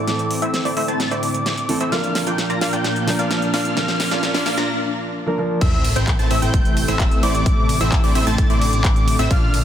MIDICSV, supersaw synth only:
0, 0, Header, 1, 2, 480
1, 0, Start_track
1, 0, Tempo, 461538
1, 79, Time_signature, 4, 2, 24, 8
1, 10028, End_track
2, 0, Start_track
2, 0, Title_t, "Supersaw synth"
2, 0, Program_c, 0, 81
2, 0, Note_on_c, 0, 57, 95
2, 0, Note_on_c, 0, 60, 90
2, 0, Note_on_c, 0, 64, 87
2, 0, Note_on_c, 0, 72, 83
2, 0, Note_on_c, 0, 74, 102
2, 410, Note_off_c, 0, 57, 0
2, 410, Note_off_c, 0, 60, 0
2, 410, Note_off_c, 0, 64, 0
2, 410, Note_off_c, 0, 72, 0
2, 410, Note_off_c, 0, 74, 0
2, 438, Note_on_c, 0, 57, 90
2, 438, Note_on_c, 0, 60, 80
2, 438, Note_on_c, 0, 64, 82
2, 438, Note_on_c, 0, 72, 85
2, 438, Note_on_c, 0, 76, 99
2, 649, Note_off_c, 0, 76, 0
2, 650, Note_off_c, 0, 57, 0
2, 650, Note_off_c, 0, 60, 0
2, 650, Note_off_c, 0, 64, 0
2, 650, Note_off_c, 0, 72, 0
2, 678, Note_on_c, 0, 57, 77
2, 678, Note_on_c, 0, 60, 70
2, 678, Note_on_c, 0, 64, 68
2, 678, Note_on_c, 0, 72, 72
2, 678, Note_on_c, 0, 74, 86
2, 770, Note_off_c, 0, 57, 0
2, 770, Note_off_c, 0, 60, 0
2, 770, Note_off_c, 0, 64, 0
2, 770, Note_off_c, 0, 72, 0
2, 770, Note_off_c, 0, 74, 0
2, 798, Note_on_c, 0, 57, 92
2, 798, Note_on_c, 0, 60, 82
2, 798, Note_on_c, 0, 72, 82
2, 798, Note_on_c, 0, 76, 92
2, 799, Note_on_c, 0, 64, 81
2, 901, Note_off_c, 0, 57, 0
2, 901, Note_off_c, 0, 60, 0
2, 901, Note_off_c, 0, 64, 0
2, 901, Note_off_c, 0, 72, 0
2, 901, Note_off_c, 0, 76, 0
2, 918, Note_on_c, 0, 57, 94
2, 918, Note_on_c, 0, 60, 80
2, 918, Note_on_c, 0, 64, 83
2, 918, Note_on_c, 0, 72, 82
2, 918, Note_on_c, 0, 81, 99
2, 1130, Note_off_c, 0, 57, 0
2, 1130, Note_off_c, 0, 60, 0
2, 1130, Note_off_c, 0, 64, 0
2, 1130, Note_off_c, 0, 72, 0
2, 1130, Note_off_c, 0, 81, 0
2, 1158, Note_on_c, 0, 57, 78
2, 1158, Note_on_c, 0, 60, 71
2, 1158, Note_on_c, 0, 64, 69
2, 1158, Note_on_c, 0, 72, 69
2, 1158, Note_on_c, 0, 74, 89
2, 1849, Note_off_c, 0, 72, 0
2, 1850, Note_off_c, 0, 57, 0
2, 1850, Note_off_c, 0, 60, 0
2, 1850, Note_off_c, 0, 64, 0
2, 1850, Note_off_c, 0, 74, 0
2, 1878, Note_on_c, 0, 57, 79
2, 1878, Note_on_c, 0, 60, 80
2, 1878, Note_on_c, 0, 64, 76
2, 1878, Note_on_c, 0, 72, 74
2, 1878, Note_on_c, 0, 76, 95
2, 1970, Note_off_c, 0, 57, 0
2, 1970, Note_off_c, 0, 60, 0
2, 1970, Note_off_c, 0, 64, 0
2, 1970, Note_off_c, 0, 72, 0
2, 1970, Note_off_c, 0, 76, 0
2, 1998, Note_on_c, 0, 58, 93
2, 1998, Note_on_c, 0, 62, 82
2, 1998, Note_on_c, 0, 65, 86
2, 1998, Note_on_c, 0, 74, 84
2, 1998, Note_on_c, 0, 77, 105
2, 2280, Note_off_c, 0, 58, 0
2, 2280, Note_off_c, 0, 62, 0
2, 2280, Note_off_c, 0, 65, 0
2, 2280, Note_off_c, 0, 74, 0
2, 2280, Note_off_c, 0, 77, 0
2, 2358, Note_on_c, 0, 58, 77
2, 2358, Note_on_c, 0, 62, 74
2, 2358, Note_on_c, 0, 65, 72
2, 2358, Note_on_c, 0, 74, 68
2, 2358, Note_on_c, 0, 79, 89
2, 2534, Note_off_c, 0, 58, 0
2, 2534, Note_off_c, 0, 62, 0
2, 2534, Note_off_c, 0, 74, 0
2, 2535, Note_off_c, 0, 65, 0
2, 2535, Note_off_c, 0, 79, 0
2, 2598, Note_on_c, 0, 58, 77
2, 2598, Note_on_c, 0, 62, 72
2, 2598, Note_on_c, 0, 65, 76
2, 2598, Note_on_c, 0, 74, 74
2, 2598, Note_on_c, 0, 82, 86
2, 2700, Note_off_c, 0, 58, 0
2, 2700, Note_off_c, 0, 62, 0
2, 2700, Note_off_c, 0, 65, 0
2, 2700, Note_off_c, 0, 74, 0
2, 2700, Note_off_c, 0, 82, 0
2, 2718, Note_on_c, 0, 58, 85
2, 2718, Note_on_c, 0, 62, 75
2, 2718, Note_on_c, 0, 65, 76
2, 2718, Note_on_c, 0, 74, 77
2, 2718, Note_on_c, 0, 77, 90
2, 2820, Note_off_c, 0, 58, 0
2, 2820, Note_off_c, 0, 62, 0
2, 2820, Note_off_c, 0, 65, 0
2, 2820, Note_off_c, 0, 77, 0
2, 2821, Note_off_c, 0, 74, 0
2, 2839, Note_on_c, 0, 58, 79
2, 2839, Note_on_c, 0, 62, 75
2, 2839, Note_on_c, 0, 65, 69
2, 2839, Note_on_c, 0, 74, 70
2, 2839, Note_on_c, 0, 79, 87
2, 3290, Note_off_c, 0, 58, 0
2, 3290, Note_off_c, 0, 62, 0
2, 3290, Note_off_c, 0, 65, 0
2, 3290, Note_off_c, 0, 74, 0
2, 3290, Note_off_c, 0, 79, 0
2, 3318, Note_on_c, 0, 62, 76
2, 3318, Note_on_c, 0, 65, 72
2, 3319, Note_on_c, 0, 58, 80
2, 3319, Note_on_c, 0, 74, 74
2, 3319, Note_on_c, 0, 77, 88
2, 3650, Note_off_c, 0, 58, 0
2, 3650, Note_off_c, 0, 62, 0
2, 3650, Note_off_c, 0, 65, 0
2, 3650, Note_off_c, 0, 74, 0
2, 3650, Note_off_c, 0, 77, 0
2, 3679, Note_on_c, 0, 58, 99
2, 3679, Note_on_c, 0, 62, 89
2, 3679, Note_on_c, 0, 65, 92
2, 3679, Note_on_c, 0, 74, 86
2, 3679, Note_on_c, 0, 77, 103
2, 4250, Note_off_c, 0, 58, 0
2, 4250, Note_off_c, 0, 62, 0
2, 4250, Note_off_c, 0, 65, 0
2, 4250, Note_off_c, 0, 74, 0
2, 4250, Note_off_c, 0, 77, 0
2, 4278, Note_on_c, 0, 58, 90
2, 4278, Note_on_c, 0, 65, 83
2, 4278, Note_on_c, 0, 74, 79
2, 4279, Note_on_c, 0, 62, 82
2, 4279, Note_on_c, 0, 77, 100
2, 4490, Note_off_c, 0, 58, 0
2, 4490, Note_off_c, 0, 62, 0
2, 4490, Note_off_c, 0, 65, 0
2, 4490, Note_off_c, 0, 74, 0
2, 4490, Note_off_c, 0, 77, 0
2, 4518, Note_on_c, 0, 58, 81
2, 4518, Note_on_c, 0, 62, 77
2, 4518, Note_on_c, 0, 65, 75
2, 4518, Note_on_c, 0, 74, 73
2, 4518, Note_on_c, 0, 77, 84
2, 4609, Note_off_c, 0, 58, 0
2, 4609, Note_off_c, 0, 77, 0
2, 4610, Note_off_c, 0, 62, 0
2, 4610, Note_off_c, 0, 65, 0
2, 4610, Note_off_c, 0, 74, 0
2, 4638, Note_on_c, 0, 58, 91
2, 4638, Note_on_c, 0, 62, 80
2, 4638, Note_on_c, 0, 65, 83
2, 4639, Note_on_c, 0, 74, 84
2, 4639, Note_on_c, 0, 77, 96
2, 4741, Note_off_c, 0, 58, 0
2, 4741, Note_off_c, 0, 62, 0
2, 4741, Note_off_c, 0, 65, 0
2, 4741, Note_off_c, 0, 74, 0
2, 4741, Note_off_c, 0, 77, 0
2, 4758, Note_on_c, 0, 62, 80
2, 4758, Note_on_c, 0, 65, 82
2, 4758, Note_on_c, 0, 74, 82
2, 4758, Note_on_c, 0, 82, 100
2, 4759, Note_on_c, 0, 58, 95
2, 4878, Note_off_c, 0, 62, 0
2, 4879, Note_off_c, 0, 58, 0
2, 4879, Note_off_c, 0, 65, 0
2, 4879, Note_off_c, 0, 74, 0
2, 4879, Note_off_c, 0, 82, 0
2, 5839, Note_on_c, 0, 57, 100
2, 5839, Note_on_c, 0, 60, 86
2, 5839, Note_on_c, 0, 64, 89
2, 5839, Note_on_c, 0, 72, 86
2, 5839, Note_on_c, 0, 76, 107
2, 6121, Note_off_c, 0, 57, 0
2, 6121, Note_off_c, 0, 60, 0
2, 6121, Note_off_c, 0, 64, 0
2, 6121, Note_off_c, 0, 72, 0
2, 6121, Note_off_c, 0, 76, 0
2, 6199, Note_on_c, 0, 57, 78
2, 6199, Note_on_c, 0, 60, 69
2, 6199, Note_on_c, 0, 64, 67
2, 6199, Note_on_c, 0, 72, 71
2, 6199, Note_on_c, 0, 79, 83
2, 6375, Note_off_c, 0, 57, 0
2, 6375, Note_off_c, 0, 60, 0
2, 6375, Note_off_c, 0, 64, 0
2, 6375, Note_off_c, 0, 72, 0
2, 6375, Note_off_c, 0, 79, 0
2, 6439, Note_on_c, 0, 57, 86
2, 6439, Note_on_c, 0, 60, 71
2, 6439, Note_on_c, 0, 64, 76
2, 6439, Note_on_c, 0, 72, 75
2, 6439, Note_on_c, 0, 81, 87
2, 6541, Note_off_c, 0, 57, 0
2, 6541, Note_off_c, 0, 60, 0
2, 6541, Note_off_c, 0, 64, 0
2, 6541, Note_off_c, 0, 72, 0
2, 6541, Note_off_c, 0, 81, 0
2, 6559, Note_on_c, 0, 57, 80
2, 6559, Note_on_c, 0, 60, 72
2, 6559, Note_on_c, 0, 64, 72
2, 6559, Note_on_c, 0, 72, 75
2, 6559, Note_on_c, 0, 76, 91
2, 6661, Note_off_c, 0, 57, 0
2, 6661, Note_off_c, 0, 60, 0
2, 6661, Note_off_c, 0, 64, 0
2, 6661, Note_off_c, 0, 72, 0
2, 6661, Note_off_c, 0, 76, 0
2, 6678, Note_on_c, 0, 64, 70
2, 6678, Note_on_c, 0, 72, 75
2, 6678, Note_on_c, 0, 79, 87
2, 6679, Note_on_c, 0, 57, 76
2, 6679, Note_on_c, 0, 60, 73
2, 7130, Note_off_c, 0, 57, 0
2, 7130, Note_off_c, 0, 60, 0
2, 7130, Note_off_c, 0, 64, 0
2, 7130, Note_off_c, 0, 72, 0
2, 7130, Note_off_c, 0, 79, 0
2, 7158, Note_on_c, 0, 57, 86
2, 7158, Note_on_c, 0, 60, 79
2, 7158, Note_on_c, 0, 64, 74
2, 7158, Note_on_c, 0, 72, 77
2, 7158, Note_on_c, 0, 76, 94
2, 7490, Note_off_c, 0, 57, 0
2, 7490, Note_off_c, 0, 60, 0
2, 7490, Note_off_c, 0, 64, 0
2, 7490, Note_off_c, 0, 72, 0
2, 7490, Note_off_c, 0, 76, 0
2, 7519, Note_on_c, 0, 57, 96
2, 7519, Note_on_c, 0, 60, 84
2, 7519, Note_on_c, 0, 64, 91
2, 7519, Note_on_c, 0, 72, 92
2, 7519, Note_on_c, 0, 74, 108
2, 8090, Note_off_c, 0, 57, 0
2, 8090, Note_off_c, 0, 60, 0
2, 8090, Note_off_c, 0, 64, 0
2, 8090, Note_off_c, 0, 72, 0
2, 8090, Note_off_c, 0, 74, 0
2, 8119, Note_on_c, 0, 57, 89
2, 8119, Note_on_c, 0, 60, 83
2, 8119, Note_on_c, 0, 64, 86
2, 8119, Note_on_c, 0, 72, 77
2, 8119, Note_on_c, 0, 76, 101
2, 8330, Note_off_c, 0, 57, 0
2, 8330, Note_off_c, 0, 60, 0
2, 8330, Note_off_c, 0, 64, 0
2, 8330, Note_off_c, 0, 72, 0
2, 8330, Note_off_c, 0, 76, 0
2, 8359, Note_on_c, 0, 57, 81
2, 8359, Note_on_c, 0, 60, 75
2, 8359, Note_on_c, 0, 64, 74
2, 8359, Note_on_c, 0, 72, 72
2, 8359, Note_on_c, 0, 74, 91
2, 8450, Note_off_c, 0, 57, 0
2, 8450, Note_off_c, 0, 60, 0
2, 8450, Note_off_c, 0, 64, 0
2, 8450, Note_off_c, 0, 72, 0
2, 8450, Note_off_c, 0, 74, 0
2, 8479, Note_on_c, 0, 57, 93
2, 8479, Note_on_c, 0, 60, 85
2, 8479, Note_on_c, 0, 64, 83
2, 8479, Note_on_c, 0, 72, 84
2, 8479, Note_on_c, 0, 76, 103
2, 8581, Note_off_c, 0, 57, 0
2, 8581, Note_off_c, 0, 60, 0
2, 8581, Note_off_c, 0, 64, 0
2, 8581, Note_off_c, 0, 72, 0
2, 8581, Note_off_c, 0, 76, 0
2, 8599, Note_on_c, 0, 57, 92
2, 8599, Note_on_c, 0, 60, 81
2, 8599, Note_on_c, 0, 64, 83
2, 8599, Note_on_c, 0, 72, 81
2, 8599, Note_on_c, 0, 81, 101
2, 8810, Note_off_c, 0, 57, 0
2, 8810, Note_off_c, 0, 60, 0
2, 8810, Note_off_c, 0, 64, 0
2, 8810, Note_off_c, 0, 72, 0
2, 8810, Note_off_c, 0, 81, 0
2, 8839, Note_on_c, 0, 57, 80
2, 8839, Note_on_c, 0, 60, 71
2, 8839, Note_on_c, 0, 64, 70
2, 8839, Note_on_c, 0, 72, 76
2, 8839, Note_on_c, 0, 74, 89
2, 9530, Note_off_c, 0, 57, 0
2, 9530, Note_off_c, 0, 60, 0
2, 9530, Note_off_c, 0, 64, 0
2, 9530, Note_off_c, 0, 72, 0
2, 9530, Note_off_c, 0, 74, 0
2, 9559, Note_on_c, 0, 57, 86
2, 9559, Note_on_c, 0, 60, 77
2, 9559, Note_on_c, 0, 64, 76
2, 9559, Note_on_c, 0, 72, 80
2, 9559, Note_on_c, 0, 76, 96
2, 9650, Note_off_c, 0, 57, 0
2, 9650, Note_off_c, 0, 60, 0
2, 9650, Note_off_c, 0, 64, 0
2, 9650, Note_off_c, 0, 72, 0
2, 9650, Note_off_c, 0, 76, 0
2, 9679, Note_on_c, 0, 58, 95
2, 9679, Note_on_c, 0, 62, 85
2, 9679, Note_on_c, 0, 65, 89
2, 9679, Note_on_c, 0, 74, 88
2, 9679, Note_on_c, 0, 77, 103
2, 9961, Note_off_c, 0, 58, 0
2, 9961, Note_off_c, 0, 62, 0
2, 9961, Note_off_c, 0, 65, 0
2, 9961, Note_off_c, 0, 74, 0
2, 9961, Note_off_c, 0, 77, 0
2, 10028, End_track
0, 0, End_of_file